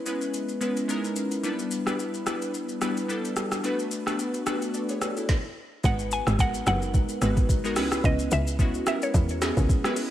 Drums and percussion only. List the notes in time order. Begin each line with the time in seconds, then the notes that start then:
0.06 shaker
0.21 shaker
0.34 shaker
0.48 shaker
0.61 shaker
0.77 shaker
0.89 shaker
1.04 shaker
1.16 shaker
1.31 shaker
1.44 shaker
1.59 shaker
1.71 shaker
1.87 cross-stick, shaker
1.99 shaker
2.14 shaker
2.26 cross-stick, shaker
2.42 shaker
2.54 shaker
2.69 shaker
2.81 cross-stick, shaker
2.97 shaker
3.10 shaker
3.25 shaker
3.36 cross-stick, shaker
3.52 cross-stick, shaker
3.64 shaker
3.79 shaker
3.91 shaker
4.07 cross-stick, shaker
4.19 shaker
4.34 shaker
4.46 cross-stick, shaker
4.62 shaker
4.74 shaker
4.89 shaker
5.02 cross-stick, shaker
5.17 shaker
5.29 kick, snare
5.84 kick, shaker
5.99 shaker
6.11 shaker
6.27 cross-stick, shaker
6.39 kick, shaker
6.54 shaker
6.67 cross-stick, shaker
6.82 shaker
6.94 kick, shaker
7.09 shaker
7.22 cross-stick, shaker
7.37 kick, shaker
7.49 kick, shaker
7.65 shaker
7.76 cross-stick, open hi-hat, shaker
7.92 cross-stick, shaker
8.04 kick, shaker
8.19 shaker
8.31 shaker
8.47 shaker
8.59 kick, shaker
8.74 shaker
8.87 cross-stick, shaker
9.02 shaker
9.14 kick, shaker
9.29 shaker
9.42 cross-stick, snare, shaker
9.57 kick, shaker
9.69 kick, shaker
9.84 cross-stick, shaker
9.96 open hi-hat, shaker